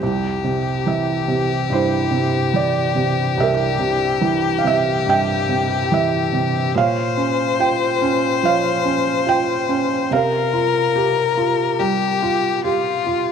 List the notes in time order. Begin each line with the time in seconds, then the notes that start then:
0.02 C2 G4
0.44 C3
0.86 E3 E5
1.28 C3
1.70 G2 E4 C5
2.11 C3
2.54 E3 D5
2.95 C3
3.37 C2 A#4 E5
3.79 C3
4.21 E3
4.59 F5
4.64 C3 E5
5.06 G2 E5 G5
5.49 C3
5.92 E3 E5
6.33 C3
6.74 A#2 C5 C#5 F5
7.17 C#4
7.59 F4 G5
8.02 C#4
8.43 F3 C#5 F5
8.85 C#4
9.26 F4 G5
9.69 C#4
10.11 C3 A#4 F5
10.53 F4
10.96 G4
11.37 F4
11.79 G3 G4
12.22 F4
12.64 F4 G4
13.07 F4